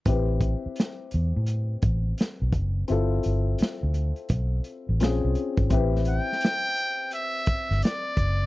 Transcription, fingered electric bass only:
X:1
M:4/4
L:1/16
Q:"Swing 16ths" 1/4=85
K:Am
V:1 name="Fingered electric bass" clef=bass
A,,,3 z3 E,, A,,3 A,,,2 z B,,, ^F,,,2 | G,,,2 G,,,2 z D,,2 z B,,,2 z A,,, _B,,, C,, z _A,,, | A,,,3 z8 G,,, z2 ^F,,,2 |]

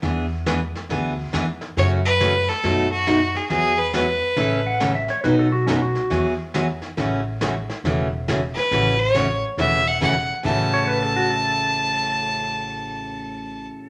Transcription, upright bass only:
X:1
M:4/4
L:1/8
Q:"Swing" 1/4=138
K:A
V:1 name="Upright bass" clef=bass
E,,4 D,,2 E,,2 | F,,4 F,,4 | E,,4 A,,,4 | B,,,4 E,,4 |
A,,,4 E,,,4 | A,,,4 E,,,4 | A,,,8- | A,,,8 |]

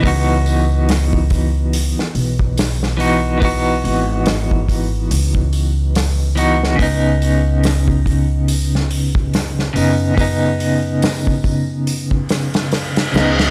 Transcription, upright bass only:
X:1
M:4/4
L:1/8
Q:"Swing 16ths" 1/4=71
K:C#m
V:1 name="Upright bass" clef=bass
C,,4 z B,,,3- | B,,, G,,,3 C,,4 | C,,6- C,, F,,- | F,,4- F,, B,,,2 C,, |]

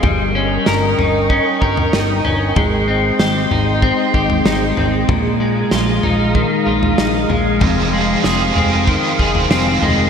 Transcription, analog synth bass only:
X:1
M:4/4
L:1/16
Q:1/4=95
K:Fm
V:1 name="Analog synth bass" clef=bass
G,,,4 G,,,2 G,,,3 z G,,,2 G,,,2 G,,,2 | A,,,4 A,,,2 A,,,3 z A,,,2 A,,,2 A,,,2 | B,,,4 B,,,2 B,,,3 z B,,,2 B,,,2 B,,,2 | F,,,4 F,,,2 F,,,3 z F,,,2 F,,,2 F,,,2 |]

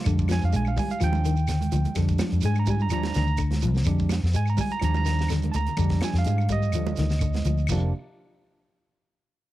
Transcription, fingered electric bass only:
X:1
M:4/4
L:1/16
Q:"Swing 16ths" 1/4=126
K:Fdor
V:1 name="Fingered electric bass" clef=bass
F,,3 F,, B,,,2 z2 E,,6 D,, z | F,,2 z F,, A,,4 E,,2 D,,4 C,,2 | F,,3 F,, A,,2 z2 E,,6 D,, z | F,,2 z F,, A,,4 E,,2 D,,4 D,,2 |
F,,,2 z12 z2 |]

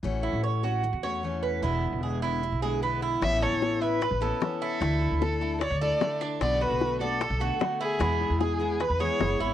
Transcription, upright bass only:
X:1
M:4/4
L:1/16
Q:1/4=150
K:A
V:1 name="Upright bass" clef=bass
A,,,3 A,,,6 E,,6- E,, | E,,,3 E,,,6 B,,,6- B,,, | A,,,3 A,,,6 A,,,2 z4 z | D,,3 D,,6 D,,2 z4 z |
B,,,3 B,,,6 B,,,2 z4 z | E,,3 E,,6 E,,2 z F,,,2 G,,,2 |]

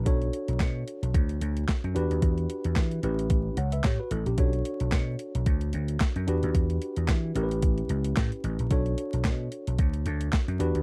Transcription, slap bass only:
X:1
M:4/4
L:1/16
Q:"Swing 16ths" 1/4=111
K:Bm
V:1 name="Slap bass" clef=bass
B,,,2 z B,,, B,,2 z B,,, D,,2 D,,2 z F,, E,, ^D,, | E,,2 z E,, E,2 A,,,4 C,,2 A,, z A,,, ^A,,, | B,,,2 z B,,, B,,2 z B,,, D,,2 D,,2 z F,, E,, ^D,, | E,,2 z E,, E,2 A,,,4 C,,2 A,, z A,,, ^A,,, |
B,,,2 z B,,, B,,2 z B,,, D,,2 D,,2 z F,, E,, ^D,, |]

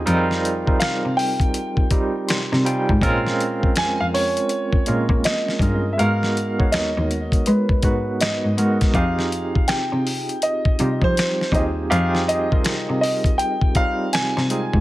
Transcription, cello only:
X:1
M:4/4
L:1/16
Q:"Swing 16ths" 1/4=81
K:Fm
V:1 name="Cello" clef=bass
F,,4 C, C,2 z4 z C, C, z A,, | B,,4 F,, F,,2 z3 B,, B, z2 G,,2 | A,,4 E,, E,,2 z A,2 A,,2 A,, A,, A,2 | F,,4 C, C,2 z3 C, F, z2 E,,2 |
F,,4 C, C,2 z4 z C, C, z A,, |]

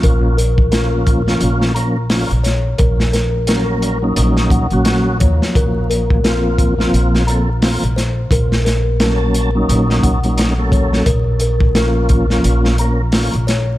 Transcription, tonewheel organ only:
X:1
M:4/4
L:1/16
Q:"Swing 16ths" 1/4=87
K:Bbm
V:1 name="Tonewheel organ"
[F,B,DF]2 z2 [F,B,DF]3 [F,B,DF]3 [F,B,DB] z [F,B,DF] z3 | z4 [G,B,DB]3 [G,B,DE]4 [G,B,DG]3 [F,B,]2- | [F,B,]4 [F,B,CF]3 [F,B,CF]3 [F,B,C=A] z [F,B,CF] z3 | z4 [G,B,D=a]3 [G,B,DE]4 [G,B,DE]2 [G,B,D=A]3 |
z4 [F,B,DF]3 [F,B,DF]3 [F,B,DB] z [F,B,DF] z3 |]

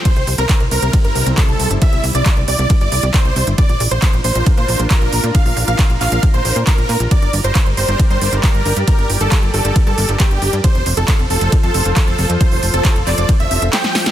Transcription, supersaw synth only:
X:1
M:4/4
L:1/16
Q:1/4=136
K:Gdor
V:1 name="Supersaw synth"
c2 z B2 z B2 z B2 z A3 z | e2 z d2 z d2 z d2 z c3 z | d2 z c2 z c2 z c2 z B3 z | f2 z f2 z f2 z c2 z B3 z |
d2 z c2 z c2 z c2 z B3 z | B2 z A2 z A2 z A2 z G3 z | c2 z A2 z A2 z A2 z A3 z | c2 z A2 z d2 z e2 z g3 z |]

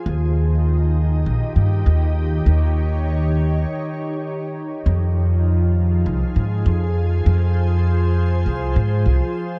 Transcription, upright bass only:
X:1
M:4/4
L:1/8
Q:"Swing 16ths" 1/4=100
K:Fm
V:1 name="Upright bass" clef=bass
E,,4 B,,, G,, E,,2 | E,,4 z4 | F,,4 C,, A,, F,,2 | F,,4 C,, A,, C,, z |]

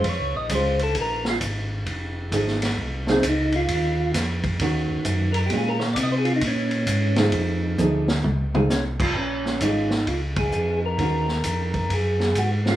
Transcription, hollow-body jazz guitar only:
X:1
M:4/4
L:1/8
Q:"Swing" 1/4=132
K:Bbm
V:1 name="Hollow-body jazz guitar"
z2 [A,DF] z4 z | z2 [F,=A,E^G] z2 [F,A,EG] z2 | z4 [E,B,DG]3 z | [A,DF] z6 [F,=A,E_A]- |
[F,=A,E_A]2 [F,=A,E^G] z2 [F,A,EG] z2 | z2 [A,DF] z4 z | [E,B,DG] z6 [F,A,D] |]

